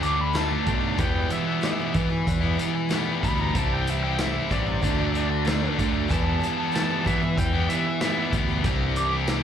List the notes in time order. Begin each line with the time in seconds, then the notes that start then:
Already playing: D2 D3 A3 D4
0.01 D3 F#3 A3 D4 F#4 D6, closed hi-hat
0.19 B5, muted distorted electric guitar stroke
0.33 D3 F#3 A3 D4 F#4 A5, snare, closed hi-hat, tambourine
0.49 F#3 A3 D4
0.65 B1 D3 F#3 A3 D4, kick, closed hi-hat
0.81 A3 D4 F#4
0.98 E2 B2 E3 G3 B3 E4 G5, kick, closed hi-hat
1.29 E3 G3 B3 E4 E5, closed hi-hat
1.45 G3 B3 E4
1.61 E2 B2 E3 G3 B3 E4, snare, closed hi-hat, tambourine
1.65 E5
1.78 E3 G3 B3 E4
1.94 E3 G3 B3 E4, kick, closed hi-hat
2.09 E3 G3 B3 E4, muted distorted electric guitar stroke
2.27 E2, kick, closed hi-hat
2.41 E3 G3 B3 E4
2.57 E3 G3 B3 E4, closed hi-hat
2.75 muted distorted electric guitar stroke
2.89 E2 B2 E3 G3 B3 E4, snare, closed hi-hat, tambourine
3.05 G3 B3 E4
3.21 D2 E3 G3 B3 E4 B5, kick, closed hi-hat
3.37 E3 G3 B3 E4
3.41 A#5
3.54 C2 C3 E3 G3 C4 D4 E4 A5, kick, closed hi-hat
3.74 G5
3.86 E3 G3 D4 E5, closed hi-hat
3.90 E4
4.02 G3 C4 E4 G5
4.19 C3 E3 G3 C4 D4 E4 E5, snare, closed hi-hat, tambourine
4.34 G3 D4 E4
4.49 A1 C3 E3 G3 C4 D4 E4 D5, kick, closed hi-hat
4.66 G3 D4 E4, muted distorted electric guitar stroke
4.82 D2 D3 F#3 A3 D4 F#4, kick, closed hi-hat
4.97 F#3 A3 D4 F#4
5.14 D3 F#3 A3 D4 F#4, closed hi-hat
5.30 muted distorted electric guitar stroke
5.45 D3 F#3 A3 D4 F#4, snare, closed hi-hat, tambourine
5.61 F#3 A3 D4
5.77 D2 D3 F#3 A3 D4, kick, closed hi-hat
5.93 A3 D4 F#4
6.08 E2 B2 E3 G3 B3 E4 G4 A5, kick, closed hi-hat
6.40 E3 G3 B3 G4, closed hi-hat
6.58 G3 B3 E4
6.71 E2 B2 E3 G3 B3 G4 A5, closed hi-hat, tambourine
6.76 E4, snare
6.88 E3 G3 B3 G4
7.05 E3 G3 B3 E4 G4 E5, kick, closed hi-hat
7.20 E3 G3 B3 G4, muted distorted electric guitar stroke
7.38 E2 G5, kick, closed hi-hat
7.52 E3 G3 B3 E4 G4
7.69 E3 G3 B3 E4 G4 E5, closed hi-hat
7.87 muted distorted electric guitar stroke
8.01 E2 B2 E3 G3 B3 G4 E5, snare, closed hi-hat, tambourine
8.05 E4
8.18 G3 B3 E4
8.32 D2 E3 G3 B3 E4, kick, closed hi-hat
8.49 E3 G3 B3 G4
8.64 C2 C3 E3 G3 C4 D4 E4 G4, kick, closed hi-hat
8.96 E3 G3 D4 G4 D6, closed hi-hat
9.11 G3 C4 E4
9.28 C3 E3 G3 C4 D4 E4 G4, snare, closed hi-hat, tambourine